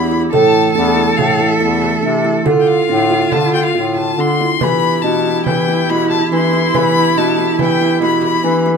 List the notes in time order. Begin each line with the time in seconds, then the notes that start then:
Already playing: E2 E3 B3 E4 G4 B5
0.11 E4
0.32 A2 C3 E3 A3 A4 A5, frame drum
0.73 E2 D4 A5, frame drum
0.96 E4
1.17 A2 F5, frame drum
1.40 E4, frame drum
1.49 E5
1.60 E2 E4
1.82 frame drum
2.03 C3 D4
2.25 E4
2.43 D3 C4 F4 A4, frame drum
2.60 G5
2.67 F5
2.89 A2 D4, frame drum
3.10 F4, frame drum
3.31 D3 A5, frame drum
3.54 F4 G5
3.66 F5
3.75 A2 F4, frame drum
3.97 A5, frame drum
4.17 D3 D4 C6
4.41 E4
4.60 E3 B3 E4 G4 B4 B5, frame drum
5.02 B2 D4 A5, frame drum
5.26 E4
5.46 E3 G5, frame drum
5.69 E4
5.89 B2 E4 B5
6.11 A5, frame drum
6.32 E3 D4 C6
6.53 E4
6.74 E3 B4 B5, frame drum
7.17 B2 D4 A5, frame drum
7.39 E4
7.59 E3 G5, frame drum
7.80 E4, frame drum
8.00 B2 E4 B5
8.22 B5, frame drum
8.43 E3 D4
8.66 E4